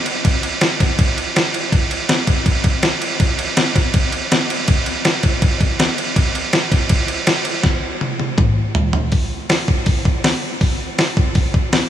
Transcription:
0.06 crash medium
0.25 kick loud
0.25 crash medium
0.43 crash medium
0.61 snare loud
0.61 crash medium
0.80 kick medium
0.80 snare soft
0.80 crash medium
0.99 kick loud
0.99 crash medium
1.18 crash medium
1.36 snare loud
1.36 crash medium
1.54 crash medium
1.72 kick loud
1.72 crash medium
1.91 crash medium
2.09 snare loud
2.09 crash medium
2.27 kick medium
2.27 crash medium
2.46 kick loud
2.46 crash medium
2.64 kick medium
2.64 crash medium
2.83 snare loud
2.83 crash medium
3.02 crash medium
3.20 kick loud
3.20 crash medium
3.39 crash medium
3.57 snare loud
3.57 crash loud
3.76 kick medium
3.76 snare soft
3.76 crash medium
3.94 kick loud
3.94 crash loud
4.12 crash medium
4.32 snare loud
4.32 crash medium
4.50 crash medium
4.68 kick loud
4.68 crash medium
4.86 crash medium
5.05 snare loud
5.05 crash medium
5.23 kick medium
5.23 crash medium
5.42 kick loud
5.42 crash medium
5.61 kick medium
5.61 crash medium
5.79 snare loud
5.79 crash medium
5.98 crash medium
6.16 kick loud
6.16 crash medium
6.35 crash medium
6.53 snare loud
6.53 crash medium
6.72 kick medium
6.72 snare soft
6.72 crash medium
6.89 kick loud
6.89 crash loud
7.08 crash medium
7.27 snare loud
7.27 crash loud
7.45 crash medium
7.63 kick loud
7.63 snare medium
8.01 high tom medium
8.20 high tom medium
8.38 kick loud
8.38 mid tom loud
8.75 floor tom loud
8.93 floor tom loud
9.12 kick loud
9.12 open hi-hat medium
9.50 snare loud
9.50 open hi-hat medium
9.68 kick medium
9.86 kick loud
9.86 open hi-hat medium
10.05 kick medium
10.24 snare loud
10.24 open hi-hat medium
10.61 kick medium
10.61 open hi-hat medium
10.98 snare loud
10.98 open hi-hat medium
11.17 kick medium
11.35 kick loud
11.35 open hi-hat medium
11.54 kick medium
11.73 snare loud
11.73 open hi-hat soft

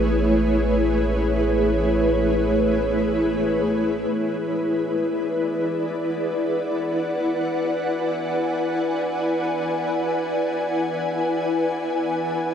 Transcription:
0.00 4.06 A1 medium
0.00 4.13 A3 medium
0.00 12.54 E4 medium
0.00 6.48 G#4 medium
0.00 12.54 B4 medium
0.00 4.12 C#5 medium
4.60 12.54 D5 medium
5.81 12.54 F#5 medium
7.23 12.54 G#5 medium

